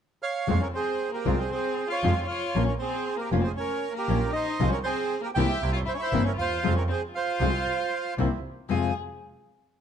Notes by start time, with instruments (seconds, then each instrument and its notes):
0.22 bandoneon C#5 F5
0.47 double bass F2, nylon-string guitar C3 F3 G#3 C4 F4, bandoneon G#3 C4 F4
0.60 violin C#4, bandoneon A#4 C#5
0.73 violin C4, bandoneon G#4 C5
1.11 violin A#3, bandoneon G4 A#4
1.25 double bass C2, nylon-string guitar C3 F3 G#3 C4 F4, bandoneon G#3 C4 F4
1.37 violin C4, bandoneon G#4 C5
1.49 violin C4, bandoneon C5
1.53 bandoneon G#4
1.88 violin F4, bandoneon F5
1.92 bandoneon C#5
2.03 double bass F2, nylon-string guitar C3 F3 G#3 C4 F4, bandoneon G#3 C4 F4
2.26 violin F4, bandoneon C#5 F5
2.55 double bass A#1, nylon-string guitar F3 A#3 C#4 F4, bandoneon A#3 C#4 F4
2.65 violin C#4, bandoneon C#5
2.69 bandoneon A#4
2.78 violin C4, bandoneon G#4 C5
3.17 violin A#3, bandoneon G4 A#4
3.32 double bass F1, nylon-string guitar F3 A#3 C#4 F4, bandoneon A#3 C#4 F4
3.41 violin C4, bandoneon C5
3.47 bandoneon G#4
3.54 violin C#4, bandoneon C#5
3.60 bandoneon A#4
3.92 violin A#3, bandoneon A#4
3.98 bandoneon G4
4.08 double bass A#1, nylon-string guitar F3 A#3 C#4 F4, bandoneon A#3 C#4 F4
4.31 violin D#4, bandoneon D#5
4.35 bandoneon C5
4.59 double bass C2, nylon-string guitar C3 F3 G#3 C4 F4, bandoneon G#3 C4 F4
4.69 violin C#4, bandoneon C#5
4.74 bandoneon A#4
4.83 violin C4, bandoneon G#4 C5
5.21 violin A#3, bandoneon A#4
5.25 bandoneon G4
5.34 double bass C2, nylon-string guitar C3 E3 A#3 C4 E4, bandoneon G#3 C4 F4 E5 G5, violin G4
5.61 double bass C2, bandoneon A#3 C4 E4
5.72 violin F4, bandoneon C#5 F5
5.85 violin E4, bandoneon C5 E5
5.94 violin C#4, bandoneon C#5
6.00 violin E4, bandoneon C5 E5
6.12 double bass G1, nylon-string guitar C3 E3 A#3 C4 E4, bandoneon A#3 C4 E4
6.24 violin C#4, bandoneon C#5
6.28 bandoneon A#4
6.35 double bass D#2, violin F4, bandoneon F5
6.41 bandoneon C5
6.63 double bass F2, nylon-string guitar C3 F3 G#3 C4 F4, bandoneon G#3 C4 F4
6.74 violin C#4, bandoneon C#5
6.78 bandoneon A#4
6.88 violin C4, bandoneon G#4 C5
7.13 violin F4, bandoneon C5 F5
7.40 double bass C2, nylon-string guitar C3 F3 G#3 C4 F4, bandoneon G#3 C4 F4
8.18 double bass C2, nylon-string guitar C3 E3 A#3 C4 E4, bandoneon A#3 C4 E4
8.69 nylon-string guitar F2 C3 F3 G#3 C4 F4, double bass F2, bandoneon G#3 C4 F4 G#5, violin G#4